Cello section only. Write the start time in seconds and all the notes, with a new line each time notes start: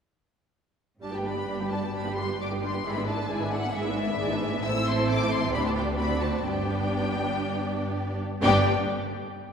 1.02 G2
1.49 G2
1.94 G2
2.40 G2
2.86 G#2
3.31 G#2
3.75 G#2
4.19 G#2
4.63 A2
5.52 D2
6.46 G2
8.44 G2